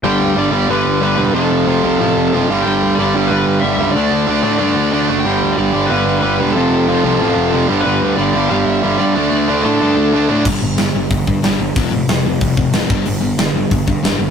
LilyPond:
<<
  \new Staff \with { instrumentName = "Lead electric guitar" } { \time 4/4 \key g \mixolydian \tempo 4 = 184 g''4 d''4 b'4 b'4 | a'2.~ a'8 r8 | g''4 d''4 b'4 e''4 | d''2.~ d''8 r8 |
g''4 d''4 b'4 b'4 | a'2.~ a'8 r8 | b'4 d''4 f''8 e''4 d''8~ | d''8 d''4 a'2 r8 |
r1 | r1 | r1 | }
  \new Staff \with { instrumentName = "Distorted electric guitar" } { \clef bass \time 4/4 \key g \mixolydian <g, d g>4 <g, d g>8 <g, d g>8 <g, d g>4 <g, d g>8 <g, d g>8 | <f, c f>4 <f, c f>8 <f, c f>8 <f, c f>4 <f, c f>8 <g, d g>8 | <g, d g>4 <g, d g>8 <g, d g>8 <g, d g>4 <g, d g>8 <g, d g>8 | <d a d'>4 <d a d'>8 <d a d'>8 <d a d'>4 <d a d'>8 <d a d'>8 |
<g, d g>4 <g, d g>8 <g, d g>8 <g, d g>4 <g, d g>8 <g, d g>8 | <f, c f>4 <f, c f>8 <f, c f>8 <f, c f>4 <f, c f>8 <g, d g>8 | <g, d g>4 <g, d g>8 <g, d g>8 <g, d g>4 <g, d g>8 <g, d g>8 | <d a d'>4 <d a d'>8 <d a d'>8 <d a d'>4 <d a d'>8 <d a d'>8 |
<g, d g>8 <g, d>8 <g, d>8 <g, d>8 <g, d>8 <g, d>8 <g, d g>8 <g, d>8 | <f, c f>8 <f, c>8 <f, c>8 <f, c>8 <f, c>8 <f, c>8 <f, c f>8 <g, d g>8 | <g, d>8 <g, d>8 <g, d>8 <g, d>8 <g, d>8 <g, d>8 <g, d g>8 <g, d>8 | }
  \new Staff \with { instrumentName = "Distorted electric guitar" } { \clef bass \time 4/4 \key g \mixolydian <g, d g>4 <g, d g>8 <g, d g>8 <g, d g>4 <g, d g>8 <g, d g>8 | <f, c f>4 <f, c f>8 <f, c f>8 <f, c f>4 <f, c f>8 <g, d g>8 | <g, d g>4 <g, d g>8 <g, d g>8 <g, d g>4 <g, d g>8 <g, d g>8 | <d a d'>4 <d a d'>8 <d a d'>8 <d a d'>4 <d a d'>8 <d a d'>8 |
<g, d g>4 <g, d g>8 <g, d g>8 <g, d g>4 <g, d g>8 <g, d g>8 | <f, c f>4 <f, c f>8 <f, c f>8 <f, c f>4 <f, c f>8 <g, d g>8 | <g, d g>4 <g, d g>8 <g, d g>8 <g, d g>4 <g, d g>8 <g, d g>8 | <d a d'>4 <d a d'>8 <d a d'>8 <d a d'>4 <d a d'>8 <d a d'>8 |
r1 | r1 | r1 | }
  \new Staff \with { instrumentName = "Picked electric bass" } { \clef bass \time 4/4 \key g \mixolydian g,,8 d,8 g,,8 g,,8 g,,8 g,,8 g,,8 e,,8 | f,,8 f,,8 f,,8 c,8 a,,8 f,,8 fis,,8 g,,8 | g,,8 d,8 g,,8 g,,8 g,,8 g,,8 g,,8 cis,8 | d,8 d,8 d,8 a,8 g,8 d,8 d,8 fis,,8 |
g,,8 d,8 g,,8 g,,8 g,,8 g,,8 g,,8 e,,8 | f,,8 f,,8 f,,8 c,8 a,,8 f,,8 f,,8 g,,8 | g,,8 d,8 g,,8 g,,8 g,,8 g,,8 g,,8 g,8 | d,8 d,8 d,8 a,8 g,8 d,8 d,8 a,8 |
g,,8 g,,8 g,,8 g,,8 g,,8 g,8 g,,8 g,,8 | f,,8 f,,8 f,,8 f,,8 f,,8 f,,8 f,,8 g,,8 | g,,8 g,,8 g,,8 g,,8 g,,8 g,8 g,,8 g,,8 | }
  \new DrumStaff \with { instrumentName = "Drums" } \drummode { \time 4/4 r4 r4 r4 r4 | r4 r4 r4 r4 | r4 r4 r4 r4 | r4 r4 r4 r4 |
r4 r4 r4 r4 | r4 r4 r4 r4 | r4 r4 r4 r4 | r4 r4 r4 r4 |
<cymc bd>4 <hho sn>4 <hho bd>8 bd8 <hho sn>4 | <hho bd>4 <hho sn>4 <hho bd>8 bd8 <hho sn>8 bd8 | hho4 <hho sn>4 <hho bd>8 bd8 <hho sn>4 | }
>>